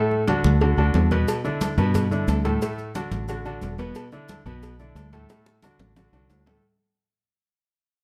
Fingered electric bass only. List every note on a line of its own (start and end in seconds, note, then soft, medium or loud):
0.44 0.75 D2 loud
0.77 0.93 D2 medium
0.94 1.24 E2 medium
1.78 2.24 G2 loud
2.28 2.58 D2 medium
3.11 3.58 A1 medium
3.62 3.92 E1 loud
4.45 4.92 B1 loud
4.95 5.25 D2 loud
5.79 6.11 A1 medium
6.12 6.28 C2 medium
6.30 6.59 D2 medium